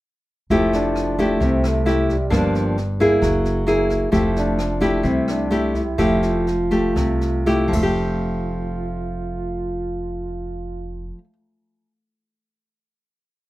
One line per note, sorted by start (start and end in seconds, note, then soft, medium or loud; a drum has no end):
0.50 1.37 F1 medium
0.50 1.39 F3 medium
0.50 1.15 A3 soft
0.50 1.15 E4 soft
0.50 1.15 G4 medium
0.50 kick medium
0.50 snare soft
0.73 1.46 D4 medium
0.73 snare soft
0.96 cross-stick medium
0.96 snare soft
1.18 1.83 A3 soft
1.18 1.83 E4 medium
1.18 1.84 G4 medium
1.18 kick soft
1.18 snare soft
1.40 2.28 C2 medium
1.40 2.29 C3 soft
1.40 kick medium
1.40 snare soft
1.45 1.70 C4 medium
1.64 cross-stick medium
1.64 snare soft
1.68 2.11 A3 medium
1.86 2.15 A3 soft
1.86 2.15 E4 medium
1.86 2.16 G4 medium
1.86 snare soft
2.09 2.97 G3 medium
2.09 kick soft
2.09 snare soft
2.30 3.18 G1 medium
2.30 3.19 G2 medium
2.30 2.76 F3 medium
2.30 2.76 A#3 soft
2.30 2.77 D4 medium
2.30 kick medium
2.30 cross-stick medium
2.30 snare soft
2.55 snare soft
2.77 snare soft
3.00 3.64 A#3 soft
3.00 3.65 E4 medium
3.00 3.65 G#4 medium
3.00 kick soft
3.00 snare soft
3.22 4.09 F#1 medium
3.22 4.11 F#3 medium
3.22 kick medium
3.22 cross-stick medium
3.22 snare soft
3.45 snare soft
3.67 4.09 A#3 soft
3.67 4.09 E4 soft
3.67 4.09 G#4 medium
3.67 snare soft
3.90 kick soft
3.90 cross-stick medium
3.90 snare soft
4.12 5.00 F1 medium
4.12 5.01 F3 soft
4.12 4.58 A3 medium
4.12 4.58 E4 soft
4.12 4.58 G4 medium
4.12 kick medium
4.12 snare soft
4.36 5.08 D4 medium
4.36 snare soft
4.59 cross-stick medium
4.59 snare soft
4.81 5.47 A3 medium
4.81 5.47 E4 medium
4.81 5.47 G4 medium
4.81 kick soft
4.81 snare soft
5.03 5.94 C2 loud
5.03 5.95 C3 medium
5.03 5.29 C4 medium
5.03 kick medium
5.03 snare soft
5.28 5.78 D4 medium
5.28 cross-stick medium
5.28 snare soft
5.51 5.81 A3 medium
5.51 5.81 E4 soft
5.51 5.82 G4 medium
5.51 snare soft
5.75 6.25 E4 medium
5.75 kick soft
5.75 snare soft
5.98 6.92 F1 medium
5.98 6.94 F3 medium
5.98 6.46 A3 soft
5.98 6.46 E4 medium
5.98 6.47 G4 medium
5.98 kick medium
5.98 cross-stick medium
5.98 snare soft
6.23 7.74 F4 medium
6.23 snare soft
6.47 snare soft
6.71 7.43 A3 soft
6.71 7.43 G4 medium
6.71 kick soft
6.71 snare soft
6.96 7.69 C2 medium
6.96 7.73 C3 soft
6.96 kick medium
6.96 cross-stick soft
6.96 snare soft
7.21 snare soft
7.46 7.73 A3 medium
7.46 7.73 E4 soft
7.46 7.73 G4 medium
7.46 snare soft
7.68 11.18 F3 medium
7.73 11.10 F1 medium
7.73 11.24 A3 medium
7.73 11.12 F4 medium
7.73 kick medium
7.73 crash medium
7.83 11.33 G4 medium